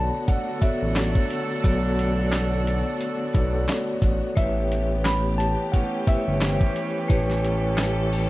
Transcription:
Already playing: string section D3 A3 B3 F#4, vibraphone B3 F#4 A4 C#5 D5, clean electric guitar A5
0.28 horn section F#3 D4 A4, clean electric guitar F#5, kick, closed hi-hat
0.61 vibraphone B3 F#4 A4 C#5 D5, clean electric guitar E5, kick, closed hi-hat
0.82 analog synth bass A1
0.96 snare, clap, closed hi-hat
1.15 kick
1.30 closed hi-hat
1.63 analog synth bass B1, vibraphone B3 F#4 A4 C#5 D5, string section B3, kick, closed hi-hat
1.99 closed hi-hat
2.33 snare, clap, closed hi-hat
2.67 closed hi-hat
3.01 closed hi-hat
3.32 analog synth bass B1, vibraphone B3 F#4 A4 C#5 D5, kick, closed hi-hat
3.69 snare, clap, closed hi-hat
4.02 analog synth bass A1, kick, closed hi-hat
4.36 analog synth bass A1, string section E3 G4, vibraphone A3 E4 G4 B4 C#5, clean electric guitar E5, kick, closed hi-hat
4.72 closed hi-hat
5.05 clean electric guitar B5, snare, clap, closed hi-hat
5.38 clean electric guitar A5, closed hi-hat
5.72 horn section E3 C#4 G4, clean electric guitar F#5, kick, closed hi-hat
6.06 vibraphone A3 E4 G4 B4 C5, clean electric guitar E5, kick, closed hi-hat
6.16 vibraphone C#5
6.28 analog synth bass G1
6.41 snare, clap, closed hi-hat
6.61 kick
6.76 closed hi-hat
7.08 analog synth bass A1, vibraphone A3 E4 G4 B4 C#5, string section A4, kick, closed hi-hat
7.30 snare
7.45 closed hi-hat
7.78 snare, clap, closed hi-hat
8.13 open hi-hat

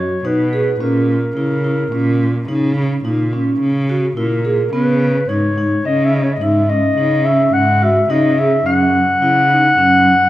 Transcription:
Already playing: cello F#2, vibraphone F#4, clarinet C#5
0.24 cello B2, vibraphone D#4, clarinet B4
0.53 vibraphone G#4
0.80 cello A#2, vibraphone C#4, clarinet A#4
1.09 clarinet A#4
1.36 cello C#3, vibraphone E4
1.64 vibraphone E4
1.92 cello A#2, vibraphone C#4
2.49 cello C#3, vibraphone D#4
2.76 vibraphone C#4
3.04 cello A#2, vibraphone D#4
3.33 vibraphone C#4
3.61 cello C#3
3.89 vibraphone F#4
4.17 cello A#2, vibraphone E4, clarinet A#4
4.45 vibraphone G#4
4.73 cello C#3, vibraphone B3, clarinet B4
5.28 cello G#2, vibraphone D#4, clarinet C#5
5.58 vibraphone D#4
5.85 cello C#3, vibraphone C#4, clarinet D#5
6.05 clarinet E5
6.14 clarinet D#5
6.23 clarinet C#5
6.33 clarinet D#5
6.41 cello G#2, vibraphone D#4, clarinet E5
6.69 vibraphone C#4, clarinet D#5
6.97 cello C#3, vibraphone D#4
7.25 vibraphone C#4, clarinet E5
7.53 cello G#2, clarinet F#5
7.82 vibraphone F#4, clarinet E5
8.09 cello C#3, vibraphone D#4, clarinet D#5
8.38 vibraphone G#4, clarinet E5
8.65 cello F#2, vibraphone C#4, clarinet F#5
9.21 cello C#3, vibraphone E4
9.50 vibraphone D#4
9.78 cello F#2, vibraphone C#4

